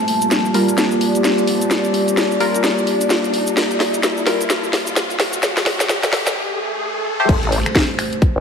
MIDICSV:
0, 0, Header, 1, 9, 480
1, 0, Start_track
1, 0, Tempo, 465116
1, 1762, Time_signature, 4, 2, 24, 8
1, 8671, End_track
2, 0, Start_track
2, 0, Title_t, "Ambient pad"
2, 0, Program_c, 0, 92
2, 0, Note_on_c, 0, 67, 89
2, 0, Note_on_c, 0, 69, 74
2, 0, Note_on_c, 0, 74, 70
2, 0, Note_on_c, 0, 76, 93
2, 0, Note_on_c, 0, 81, 80
2, 704, Note_off_c, 0, 76, 0
2, 1606, Note_off_c, 0, 69, 0
2, 6561, Note_off_c, 0, 67, 0
2, 6562, Note_off_c, 0, 74, 0
2, 6563, Note_off_c, 0, 81, 0
2, 8671, End_track
3, 0, Start_track
3, 0, Title_t, "Synth stab"
3, 0, Program_c, 1, 62
3, 562, Note_on_c, 1, 55, 80
3, 562, Note_on_c, 1, 65, 76
3, 562, Note_on_c, 1, 70, 89
3, 693, Note_off_c, 1, 55, 0
3, 693, Note_off_c, 1, 65, 0
3, 693, Note_off_c, 1, 70, 0
3, 2481, Note_on_c, 1, 55, 95
3, 2481, Note_on_c, 1, 65, 86
3, 2481, Note_on_c, 1, 70, 106
3, 2669, Note_off_c, 1, 55, 0
3, 2669, Note_off_c, 1, 65, 0
3, 2669, Note_off_c, 1, 70, 0
3, 4402, Note_on_c, 1, 55, 86
3, 4402, Note_on_c, 1, 65, 77
3, 4402, Note_on_c, 1, 70, 92
3, 4533, Note_off_c, 1, 55, 0
3, 4533, Note_off_c, 1, 65, 0
3, 4533, Note_off_c, 1, 70, 0
3, 7427, Note_on_c, 1, 57, 81
3, 7427, Note_on_c, 1, 67, 77
3, 7428, Note_on_c, 1, 72, 96
3, 7587, Note_off_c, 1, 57, 0
3, 7587, Note_off_c, 1, 67, 0
3, 7587, Note_off_c, 1, 72, 0
3, 8671, End_track
4, 0, Start_track
4, 0, Title_t, "Analog synth pad"
4, 0, Program_c, 2, 89
4, 0, Note_on_c, 2, 55, 81
4, 0, Note_on_c, 2, 58, 87
4, 0, Note_on_c, 2, 65, 75
4, 6521, Note_off_c, 2, 55, 0
4, 6521, Note_off_c, 2, 58, 0
4, 6521, Note_off_c, 2, 65, 0
4, 7523, Note_on_c, 2, 57, 79
4, 7523, Note_on_c, 2, 67, 76
4, 7524, Note_on_c, 2, 72, 91
4, 8671, Note_off_c, 2, 57, 0
4, 8671, Note_off_c, 2, 67, 0
4, 8671, Note_off_c, 2, 72, 0
4, 8671, End_track
5, 0, Start_track
5, 0, Title_t, "Wobble bass"
5, 0, Program_c, 3, 39
5, 7522, Note_on_c, 3, 33, 98
5, 7884, Note_off_c, 3, 33, 0
5, 8627, Note_on_c, 3, 33, 97
5, 8671, Note_off_c, 3, 33, 0
5, 8671, End_track
6, 0, Start_track
6, 0, Title_t, "Impact"
6, 0, Program_c, 4, 103
6, 7523, Note_on_c, 4, 60, 77
6, 8671, Note_off_c, 4, 60, 0
6, 8671, End_track
7, 0, Start_track
7, 0, Title_t, "Riser"
7, 0, Program_c, 5, 103
7, 0, Note_on_c, 5, 60, 79
7, 7522, Note_off_c, 5, 60, 0
7, 8671, End_track
8, 0, Start_track
8, 0, Title_t, "Swell"
8, 0, Program_c, 6, 103
8, 6562, Note_on_c, 6, 60, 78
8, 7522, Note_off_c, 6, 60, 0
8, 8671, End_track
9, 0, Start_track
9, 0, Title_t, "Drums"
9, 81, Note_on_c, 9, 46, 105
9, 184, Note_off_c, 9, 46, 0
9, 223, Note_on_c, 9, 69, 74
9, 225, Note_on_c, 9, 42, 50
9, 321, Note_off_c, 9, 42, 0
9, 321, Note_off_c, 9, 69, 0
9, 321, Note_on_c, 9, 38, 52
9, 321, Note_on_c, 9, 42, 63
9, 321, Note_on_c, 9, 69, 65
9, 424, Note_off_c, 9, 38, 0
9, 424, Note_off_c, 9, 42, 0
9, 425, Note_off_c, 9, 69, 0
9, 465, Note_on_c, 9, 69, 38
9, 561, Note_on_c, 9, 46, 106
9, 568, Note_off_c, 9, 69, 0
9, 664, Note_off_c, 9, 46, 0
9, 706, Note_on_c, 9, 42, 51
9, 710, Note_on_c, 9, 69, 76
9, 802, Note_off_c, 9, 42, 0
9, 802, Note_on_c, 9, 38, 55
9, 802, Note_on_c, 9, 42, 65
9, 803, Note_off_c, 9, 69, 0
9, 803, Note_on_c, 9, 69, 66
9, 905, Note_off_c, 9, 38, 0
9, 905, Note_off_c, 9, 42, 0
9, 906, Note_off_c, 9, 69, 0
9, 944, Note_on_c, 9, 69, 40
9, 1042, Note_on_c, 9, 46, 107
9, 1047, Note_off_c, 9, 69, 0
9, 1145, Note_off_c, 9, 46, 0
9, 1186, Note_on_c, 9, 42, 51
9, 1190, Note_on_c, 9, 69, 68
9, 1282, Note_off_c, 9, 42, 0
9, 1282, Note_on_c, 9, 38, 56
9, 1282, Note_on_c, 9, 42, 63
9, 1284, Note_off_c, 9, 69, 0
9, 1284, Note_on_c, 9, 69, 65
9, 1386, Note_off_c, 9, 38, 0
9, 1386, Note_off_c, 9, 42, 0
9, 1387, Note_off_c, 9, 69, 0
9, 1425, Note_on_c, 9, 69, 41
9, 1426, Note_on_c, 9, 42, 37
9, 1522, Note_on_c, 9, 46, 105
9, 1528, Note_off_c, 9, 69, 0
9, 1530, Note_off_c, 9, 42, 0
9, 1625, Note_off_c, 9, 46, 0
9, 1666, Note_on_c, 9, 42, 52
9, 1667, Note_on_c, 9, 69, 86
9, 1762, Note_off_c, 9, 42, 0
9, 1762, Note_on_c, 9, 38, 60
9, 1762, Note_on_c, 9, 42, 66
9, 1763, Note_off_c, 9, 69, 0
9, 1763, Note_on_c, 9, 69, 66
9, 1865, Note_off_c, 9, 38, 0
9, 1865, Note_off_c, 9, 42, 0
9, 1866, Note_off_c, 9, 69, 0
9, 1902, Note_on_c, 9, 69, 36
9, 1906, Note_on_c, 9, 42, 33
9, 2001, Note_on_c, 9, 46, 103
9, 2006, Note_off_c, 9, 69, 0
9, 2009, Note_off_c, 9, 42, 0
9, 2104, Note_off_c, 9, 46, 0
9, 2146, Note_on_c, 9, 42, 50
9, 2148, Note_on_c, 9, 69, 72
9, 2241, Note_off_c, 9, 42, 0
9, 2241, Note_on_c, 9, 38, 65
9, 2241, Note_on_c, 9, 42, 67
9, 2243, Note_off_c, 9, 69, 0
9, 2243, Note_on_c, 9, 69, 65
9, 2344, Note_off_c, 9, 38, 0
9, 2344, Note_off_c, 9, 42, 0
9, 2347, Note_off_c, 9, 69, 0
9, 2388, Note_on_c, 9, 69, 34
9, 2481, Note_on_c, 9, 46, 106
9, 2491, Note_off_c, 9, 69, 0
9, 2584, Note_off_c, 9, 46, 0
9, 2626, Note_on_c, 9, 42, 52
9, 2635, Note_on_c, 9, 69, 83
9, 2720, Note_off_c, 9, 69, 0
9, 2720, Note_on_c, 9, 69, 69
9, 2722, Note_off_c, 9, 42, 0
9, 2722, Note_on_c, 9, 38, 71
9, 2722, Note_on_c, 9, 42, 71
9, 2823, Note_off_c, 9, 69, 0
9, 2825, Note_off_c, 9, 38, 0
9, 2825, Note_off_c, 9, 42, 0
9, 2869, Note_on_c, 9, 69, 36
9, 2961, Note_on_c, 9, 46, 105
9, 2972, Note_off_c, 9, 69, 0
9, 3065, Note_off_c, 9, 46, 0
9, 3106, Note_on_c, 9, 69, 74
9, 3107, Note_on_c, 9, 42, 53
9, 3198, Note_off_c, 9, 69, 0
9, 3198, Note_on_c, 9, 69, 67
9, 3202, Note_off_c, 9, 42, 0
9, 3202, Note_on_c, 9, 38, 70
9, 3202, Note_on_c, 9, 42, 69
9, 3302, Note_off_c, 9, 69, 0
9, 3305, Note_off_c, 9, 38, 0
9, 3305, Note_off_c, 9, 42, 0
9, 3347, Note_on_c, 9, 42, 36
9, 3347, Note_on_c, 9, 69, 38
9, 3443, Note_on_c, 9, 46, 99
9, 3450, Note_off_c, 9, 69, 0
9, 3451, Note_off_c, 9, 42, 0
9, 3546, Note_off_c, 9, 46, 0
9, 3580, Note_on_c, 9, 69, 79
9, 3587, Note_on_c, 9, 42, 52
9, 3682, Note_off_c, 9, 42, 0
9, 3682, Note_on_c, 9, 38, 79
9, 3682, Note_on_c, 9, 42, 72
9, 3684, Note_off_c, 9, 69, 0
9, 3688, Note_on_c, 9, 69, 68
9, 3786, Note_off_c, 9, 38, 0
9, 3786, Note_off_c, 9, 42, 0
9, 3791, Note_off_c, 9, 69, 0
9, 3827, Note_on_c, 9, 42, 36
9, 3827, Note_on_c, 9, 69, 33
9, 3923, Note_on_c, 9, 38, 77
9, 3923, Note_on_c, 9, 46, 105
9, 3930, Note_off_c, 9, 42, 0
9, 3930, Note_off_c, 9, 69, 0
9, 4026, Note_off_c, 9, 38, 0
9, 4026, Note_off_c, 9, 46, 0
9, 4067, Note_on_c, 9, 42, 53
9, 4067, Note_on_c, 9, 69, 74
9, 4159, Note_off_c, 9, 69, 0
9, 4159, Note_on_c, 9, 69, 61
9, 4163, Note_off_c, 9, 42, 0
9, 4163, Note_on_c, 9, 38, 77
9, 4163, Note_on_c, 9, 42, 72
9, 4263, Note_off_c, 9, 69, 0
9, 4266, Note_off_c, 9, 38, 0
9, 4266, Note_off_c, 9, 42, 0
9, 4307, Note_on_c, 9, 69, 37
9, 4402, Note_on_c, 9, 38, 86
9, 4402, Note_on_c, 9, 46, 106
9, 4410, Note_off_c, 9, 69, 0
9, 4506, Note_off_c, 9, 38, 0
9, 4506, Note_off_c, 9, 46, 0
9, 4547, Note_on_c, 9, 42, 57
9, 4552, Note_on_c, 9, 69, 81
9, 4642, Note_off_c, 9, 42, 0
9, 4642, Note_off_c, 9, 69, 0
9, 4642, Note_on_c, 9, 38, 83
9, 4642, Note_on_c, 9, 42, 74
9, 4642, Note_on_c, 9, 69, 67
9, 4745, Note_off_c, 9, 69, 0
9, 4746, Note_off_c, 9, 38, 0
9, 4746, Note_off_c, 9, 42, 0
9, 4786, Note_on_c, 9, 69, 35
9, 4882, Note_on_c, 9, 38, 83
9, 4882, Note_on_c, 9, 46, 103
9, 4889, Note_off_c, 9, 69, 0
9, 4985, Note_off_c, 9, 38, 0
9, 4985, Note_off_c, 9, 46, 0
9, 5024, Note_on_c, 9, 69, 72
9, 5027, Note_on_c, 9, 42, 56
9, 5123, Note_off_c, 9, 42, 0
9, 5123, Note_on_c, 9, 38, 92
9, 5123, Note_on_c, 9, 42, 74
9, 5124, Note_off_c, 9, 69, 0
9, 5124, Note_on_c, 9, 69, 62
9, 5226, Note_off_c, 9, 38, 0
9, 5226, Note_off_c, 9, 42, 0
9, 5227, Note_off_c, 9, 69, 0
9, 5267, Note_on_c, 9, 42, 40
9, 5269, Note_on_c, 9, 69, 37
9, 5362, Note_on_c, 9, 38, 94
9, 5362, Note_on_c, 9, 46, 103
9, 5370, Note_off_c, 9, 42, 0
9, 5373, Note_off_c, 9, 69, 0
9, 5465, Note_off_c, 9, 38, 0
9, 5465, Note_off_c, 9, 46, 0
9, 5501, Note_on_c, 9, 69, 78
9, 5508, Note_on_c, 9, 42, 53
9, 5600, Note_off_c, 9, 69, 0
9, 5600, Note_on_c, 9, 69, 67
9, 5603, Note_off_c, 9, 42, 0
9, 5603, Note_on_c, 9, 38, 96
9, 5603, Note_on_c, 9, 42, 74
9, 5703, Note_off_c, 9, 69, 0
9, 5706, Note_off_c, 9, 38, 0
9, 5706, Note_off_c, 9, 42, 0
9, 5747, Note_on_c, 9, 38, 83
9, 5747, Note_on_c, 9, 42, 37
9, 5749, Note_on_c, 9, 69, 35
9, 5842, Note_off_c, 9, 38, 0
9, 5842, Note_on_c, 9, 38, 94
9, 5842, Note_on_c, 9, 46, 108
9, 5850, Note_off_c, 9, 42, 0
9, 5852, Note_off_c, 9, 69, 0
9, 5945, Note_off_c, 9, 38, 0
9, 5945, Note_off_c, 9, 46, 0
9, 5987, Note_on_c, 9, 38, 85
9, 5987, Note_on_c, 9, 46, 62
9, 5990, Note_on_c, 9, 69, 83
9, 6082, Note_off_c, 9, 38, 0
9, 6082, Note_on_c, 9, 38, 103
9, 6082, Note_on_c, 9, 42, 67
9, 6084, Note_off_c, 9, 69, 0
9, 6084, Note_on_c, 9, 69, 67
9, 6091, Note_off_c, 9, 46, 0
9, 6186, Note_off_c, 9, 38, 0
9, 6186, Note_off_c, 9, 42, 0
9, 6188, Note_off_c, 9, 69, 0
9, 6226, Note_on_c, 9, 69, 42
9, 6227, Note_on_c, 9, 38, 88
9, 6227, Note_on_c, 9, 42, 39
9, 6323, Note_off_c, 9, 38, 0
9, 6323, Note_on_c, 9, 38, 108
9, 6323, Note_on_c, 9, 46, 112
9, 6329, Note_off_c, 9, 69, 0
9, 6330, Note_off_c, 9, 42, 0
9, 6426, Note_off_c, 9, 38, 0
9, 6426, Note_off_c, 9, 46, 0
9, 6467, Note_on_c, 9, 38, 86
9, 6467, Note_on_c, 9, 42, 54
9, 6467, Note_on_c, 9, 69, 83
9, 6570, Note_off_c, 9, 38, 0
9, 6570, Note_off_c, 9, 42, 0
9, 6570, Note_off_c, 9, 69, 0
9, 7522, Note_on_c, 9, 36, 121
9, 7523, Note_on_c, 9, 42, 69
9, 7523, Note_on_c, 9, 49, 104
9, 7625, Note_off_c, 9, 36, 0
9, 7626, Note_off_c, 9, 42, 0
9, 7626, Note_off_c, 9, 49, 0
9, 7667, Note_on_c, 9, 42, 39
9, 7763, Note_on_c, 9, 46, 102
9, 7771, Note_off_c, 9, 42, 0
9, 7866, Note_off_c, 9, 46, 0
9, 7907, Note_on_c, 9, 26, 63
9, 7907, Note_on_c, 9, 42, 57
9, 8002, Note_off_c, 9, 42, 0
9, 8002, Note_on_c, 9, 36, 122
9, 8002, Note_on_c, 9, 42, 71
9, 8005, Note_on_c, 9, 38, 127
9, 8010, Note_off_c, 9, 26, 0
9, 8105, Note_off_c, 9, 36, 0
9, 8105, Note_off_c, 9, 42, 0
9, 8108, Note_off_c, 9, 38, 0
9, 8243, Note_on_c, 9, 26, 85
9, 8243, Note_on_c, 9, 46, 110
9, 8346, Note_off_c, 9, 26, 0
9, 8346, Note_off_c, 9, 46, 0
9, 8387, Note_on_c, 9, 42, 55
9, 8482, Note_on_c, 9, 36, 118
9, 8483, Note_off_c, 9, 42, 0
9, 8483, Note_on_c, 9, 42, 72
9, 8585, Note_off_c, 9, 36, 0
9, 8586, Note_off_c, 9, 42, 0
9, 8671, End_track
0, 0, End_of_file